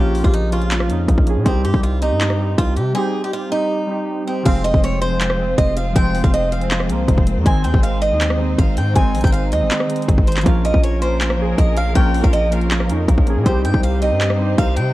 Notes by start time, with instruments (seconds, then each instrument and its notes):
Already playing: 808-style bass A#1, synth keys C#3 F3 A#3 C#4 G#4, steel-string acoustic guitar G4
0.00 synth keys F4
0.15 open hi-hat
0.21 808-style bass A#1, synth keys F3 A#3 C#4, steel-string acoustic guitar F4, kick
0.26 synth keys F4
0.33 steel-string acoustic guitar D#4, closed hi-hat
0.50 synth keys F3 A#3 C#4, steel-string acoustic guitar F4, closed hi-hat
0.54 synth keys F4
0.61 closed hi-hat
0.71 clap, closed hi-hat
0.80 cross-stick
0.87 808-style bass F2, synth keys F3 A#3 C#4, closed hi-hat
0.92 synth keys D#4
1.08 808-style bass A#1, kick, closed hi-hat
1.18 808-style bass A#1, kick
1.25 synth keys F3 A#3 C#4, closed hi-hat
1.30 synth keys G#4
1.36 808-style bass A#2
1.43 808-style bass C2, synth keys G3 C4 D#4, steel-string acoustic guitar C4, kick, closed hi-hat
1.48 synth keys G4
1.65 808-style bass G2, steel-string acoustic guitar G4, closed hi-hat
1.72 808-style bass C2, synth keys G3 C4 D#4, kick
1.76 synth keys G4
1.83 steel-string acoustic guitar F4, closed hi-hat
2.00 synth keys G3 C4 D#4, steel-string acoustic guitar D#4, closed hi-hat
2.04 synth keys G4
2.11 808-style bass G2
2.21 clap, closed hi-hat
2.30 cross-stick
2.37 synth keys G3 C4 D#4
2.42 synth keys G4
2.58 808-style bass C2, steel-string acoustic guitar F4, kick, closed hi-hat
2.76 808-style bass C3, steel-string acoustic guitar G4, closed hi-hat
2.94 synth keys G3 C4 D#4, steel-string acoustic guitar G#4
2.98 synth keys G4
3.21 synth keys G3 C4 D#4, steel-string acoustic guitar G4
3.26 synth keys G4
3.33 steel-string acoustic guitar F4
3.50 synth keys G3 C4 D#4, steel-string acoustic guitar D#4
3.54 synth keys G4
3.87 synth keys G3 C4 D#4
3.91 synth keys G4
4.25 synth keys G3 C4 D#4, steel-string acoustic guitar C4
4.29 synth keys G4
4.43 808-style bass F1, synth keys F3 G#3, string section G#3 C4 F4 C5, steel-string acoustic guitar F5, kick, closed hi-hat, crash
4.48 synth keys C4
4.64 steel-string acoustic guitar D#5, closed hi-hat
4.74 808-style bass F1, kick
4.84 steel-string acoustic guitar C#5, closed hi-hat
5.02 steel-string acoustic guitar C5, closed hi-hat
5.09 synth keys F3 G#3
5.13 synth keys C4
5.21 clap, closed hi-hat
5.30 cross-stick
5.37 synth keys F3 G#3
5.42 synth keys C4
5.58 808-style bass F1, steel-string acoustic guitar D#5, kick, closed hi-hat
5.77 steel-string acoustic guitar F5, closed hi-hat
5.93 808-style bass F1, synth keys F3 G#3, steel-string acoustic guitar G5, kick, closed hi-hat
5.98 synth keys C4
6.15 open hi-hat
6.24 808-style bass F1, steel-string acoustic guitar F5, kick
6.34 steel-string acoustic guitar D#5, closed hi-hat
6.52 steel-string acoustic guitar F5, closed hi-hat
6.59 synth keys F3 G#3, closed hi-hat
6.63 synth keys C4
6.71 clap, closed hi-hat
6.80 cross-stick
6.87 808-style bass C2, synth keys F3 G#3, closed hi-hat
6.92 synth keys A#3
7.08 808-style bass F1, kick, closed hi-hat
7.18 808-style bass F1, kick
7.27 closed hi-hat
7.36 808-style bass F2
7.43 808-style bass G#1, synth keys D#3 G#3, string section D#4, steel-string acoustic guitar G#5, kick, closed hi-hat
7.47 synth keys C4
7.64 808-style bass D#2, steel-string acoustic guitar G5, closed hi-hat
7.74 808-style bass G#1, kick
7.83 steel-string acoustic guitar F5, closed hi-hat
8.02 steel-string acoustic guitar D#5, closed hi-hat
8.09 808-style bass D#2, synth keys D#3 G#3
8.14 synth keys D#4
8.21 clap, closed hi-hat
8.30 cross-stick
8.37 synth keys D#3 G#3
8.42 synth keys C4
8.58 808-style bass G#1, steel-string acoustic guitar F5, kick, closed hi-hat
8.77 808-style bass G#2, steel-string acoustic guitar G5, closed hi-hat
8.93 808-style bass G#1, synth keys D#3 G#3, steel-string acoustic guitar G#5, kick, closed hi-hat
8.98 synth keys C4
9.14 808-style bass A#1, closed hi-hat, open hi-hat
9.21 808-style bass G#1, steel-string acoustic guitar G5, kick, closed hi-hat
9.27 closed hi-hat
9.32 steel-string acoustic guitar F5, closed hi-hat
9.52 808-style bass D#2, steel-string acoustic guitar D#5, closed hi-hat
9.59 808-style bass G#1, synth keys D#3 G#3
9.63 synth keys C4
9.71 clap, closed hi-hat
9.80 cross-stick
9.87 synth keys D#3 G#3, closed hi-hat
9.92 synth keys C4
9.96 closed hi-hat
10.02 closed hi-hat
10.08 808-style bass G#1, kick, closed hi-hat
10.18 808-style bass G#1, kick
10.27 steel-string acoustic guitar C5, closed hi-hat
10.32 closed hi-hat
10.36 clap, closed hi-hat
10.41 synth keys F3 A#3, closed hi-hat
10.46 808-style bass A#1, string section F3 A#3 C#4 A#4, synth keys C#4 F4, steel-string acoustic guitar F5, kick, closed hi-hat
10.65 steel-string acoustic guitar D#5, closed hi-hat
10.72 808-style bass A#1, synth keys F3 A#3 C#4, kick
10.76 synth keys F4
10.83 steel-string acoustic guitar C#5, closed hi-hat
10.99 synth keys F3 A#3 C#4, steel-string acoustic guitar C5, closed hi-hat
11.04 synth keys F4
11.21 clap, closed hi-hat
11.30 cross-stick
11.37 synth keys F3 A#3 C#4
11.42 synth keys G#4
11.58 808-style bass A#1, steel-string acoustic guitar D#5, kick, closed hi-hat
11.77 steel-string acoustic guitar F5, closed hi-hat
11.94 808-style bass A#1, synth keys F3 A#3 C#4, steel-string acoustic guitar G5, kick, closed hi-hat
11.99 synth keys F4
12.15 open hi-hat
12.21 808-style bass A#1, synth keys F3 A#3 C#4, steel-string acoustic guitar F5, kick
12.26 synth keys F4
12.33 steel-string acoustic guitar D#5, closed hi-hat
12.50 synth keys F3 A#3 C#4, steel-string acoustic guitar F5, closed hi-hat
12.54 synth keys F4
12.61 closed hi-hat
12.71 clap, closed hi-hat
12.80 cross-stick
12.87 808-style bass F2, synth keys F3 A#3 C#4, closed hi-hat
12.92 synth keys D#4
13.08 808-style bass A#1, kick, closed hi-hat
13.18 808-style bass A#1, kick
13.25 synth keys F3 A#3 C#4, closed hi-hat
13.30 synth keys G#4
13.36 808-style bass A#2
13.43 808-style bass C2, synth keys G3 C4 D#4, string section G3 C4 D#4 C5, steel-string acoustic guitar C5, kick, closed hi-hat
13.48 synth keys G4
13.65 808-style bass G2, steel-string acoustic guitar G5, closed hi-hat
13.72 808-style bass C2, synth keys G3 C4 D#4, kick
13.76 synth keys G4
13.83 steel-string acoustic guitar F5, closed hi-hat
14.00 synth keys G3 C4 D#4, steel-string acoustic guitar D#5, closed hi-hat
14.04 synth keys G4
14.11 808-style bass G2
14.21 clap, closed hi-hat
14.30 cross-stick
14.37 synth keys G3 C4 D#4
14.42 synth keys G4
14.58 808-style bass C2, steel-string acoustic guitar F5, kick, closed hi-hat
14.76 808-style bass C3, steel-string acoustic guitar G5, closed hi-hat